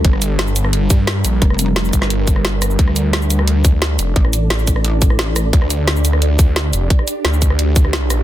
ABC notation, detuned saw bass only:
X:1
M:4/4
L:1/8
Q:1/4=175
K:Dm
V:1 name="Detuned saw bass" clef=bass
G,,,4- G,,, G,,2 B,,, | z3 G,,,4- G,,, | D,,4- D,, D,,2 F,,, | z8 |
D,,4- D,, D,,2 F,,, | z2 D,,6 |]